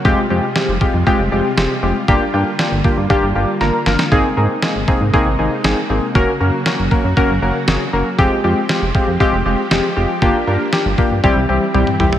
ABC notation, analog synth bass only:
X:1
M:4/4
L:1/16
Q:1/4=118
K:Fdor
V:1 name="Analog synth bass" clef=bass
F,,, z F,, z2 F,,, z F,, z F,,, F,,, z F,,, z F,,, z | G,,, z G,, z2 G,,, z G,, z G,,, G,,, z G,,, z G,,, z | A,,, z A,, z2 A,,, z A,, z A,,, A,,, z A,,, z A,,, z | _G,,, z _G,, z2 G,,, z G,, z G,,, G,,, z G,,, z G,,, z |
F,,, z F,, z2 F,,, z F,, z F,,, F,,, z F,,, z F,,, z | G,,, z G,, z2 G,,, z G,, C,, C,, C,, z C,, z C,, z |]